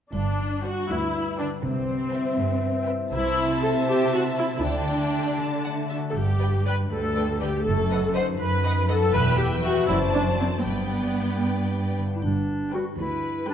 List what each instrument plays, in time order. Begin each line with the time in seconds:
0.13 double bass section G1, cello section G2, harp G2, viola section D4, triangle
0.40 harp G3
0.63 harp D4, viola section F#4, violin section B4 D5 G5
0.89 cello section D2, viola section E4, harp B4
1.15 harp D4
1.39 harp D3, viola section D4, violin section B4 D5 G5
1.64 double bass section C2, cello section C3, harp C3, viola section C4
1.89 harp G3
2.12 harp E4, violin section B4 E5 G5
2.38 cello section G2, harp B4
2.62 harp E4
2.87 harp C4, violin section B4 E5 G5
3.11 double bass section C2, harp C3, cello section C3, viola section E4, violin section C5 E5 A5
3.37 harp A3
3.62 harp E4, viola section A4
3.87 viola section G4, harp A4
4.12 harp E4, viola section F#4
4.37 harp C4, viola section E4
4.56 viola section E4, violin section A5
4.62 double bass section D2, cello section D3, harp D3, viola section D4, violin section D5 G5
4.88 harp A3
5.13 harp G4 A4
5.39 harp D3, violin section A5
5.64 harp A3, violin section F#5
5.89 harp F#4 A4, violin section E5
6.09 viola section A4
6.15 double bass section G1, cello section G2, harp G2, viola section G4, triangle
6.39 harp B3, violin section B4 D5 G5
6.66 harp D4, viola section B4, violin section B4 D5 G5
6.91 cello section D2, harp G4, viola section A4
7.16 harp D4, violin section B4 D5 G5
7.40 harp D3, viola section G4, violin section B4 D5 G5
7.65 double bass section F#1, cello section F#2, harp F#2, viola section A4
7.90 harp B3, violin section B4 D#5 F#5
8.13 harp D#4, violin section B4 D#5 F#5, viola section C5
8.40 cello section F#2, viola section B4, harp B4
8.63 harp D#4, violin section B4 D#5 F#5
8.88 harp F#3, viola section A4, violin section B4 D#5 F#5
9.13 double bass section E1, harp E2, cello section E2, violin section B4 E5 G5, viola section B4
9.37 harp B3, viola section G4
9.62 harp E4 G4, viola section F#4
9.87 double bass section F#1, cello section F#2, harp F#2, viola section E4, violin section C5 D5 A5
10.13 harp C4, viola section D4
10.39 viola section C4, harp D4 A4
10.57 viola section C4
10.65 double bass section G1, cello section G2, harp G2, viola section B3, violin section B4 D5 G5
10.93 harp B3
11.20 harp D4
11.45 harp G4
11.71 harp D4
11.97 harp D3
12.05 harp G2
12.10 harp B3
12.14 harp D4, clarinet E4
12.19 cello section G2, harp G4, triangle
12.23 double bass section G1, clarinet D4
12.72 viola section G3 B4, clarinet F#4, violin section G5
12.97 cello section D2, clarinet E4, violin section B4
13.47 viola section G3 B4, clarinet D4, violin section G5